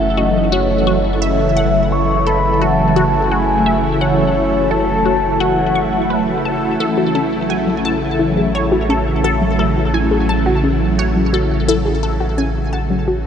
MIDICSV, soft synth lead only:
0, 0, Header, 1, 2, 480
1, 0, Start_track
1, 0, Key_signature, 3, "minor"
1, 0, Tempo, 697674
1, 839, Time_signature, 4, 2, 24, 8
1, 9128, End_track
2, 0, Start_track
2, 0, Title_t, "Soft synth lead"
2, 0, Program_c, 0, 80
2, 0, Note_on_c, 0, 76, 99
2, 121, Note_on_c, 0, 75, 97
2, 131, Note_off_c, 0, 76, 0
2, 361, Note_on_c, 0, 73, 91
2, 372, Note_off_c, 0, 75, 0
2, 720, Note_off_c, 0, 73, 0
2, 841, Note_on_c, 0, 76, 111
2, 1322, Note_on_c, 0, 85, 110
2, 1332, Note_off_c, 0, 76, 0
2, 1556, Note_off_c, 0, 85, 0
2, 1560, Note_on_c, 0, 83, 101
2, 1803, Note_on_c, 0, 81, 107
2, 1813, Note_off_c, 0, 83, 0
2, 2282, Note_on_c, 0, 80, 98
2, 2292, Note_off_c, 0, 81, 0
2, 2641, Note_off_c, 0, 80, 0
2, 2761, Note_on_c, 0, 73, 105
2, 3239, Note_on_c, 0, 81, 112
2, 3249, Note_off_c, 0, 73, 0
2, 3720, Note_on_c, 0, 78, 95
2, 3730, Note_off_c, 0, 81, 0
2, 4440, Note_off_c, 0, 78, 0
2, 9128, End_track
0, 0, End_of_file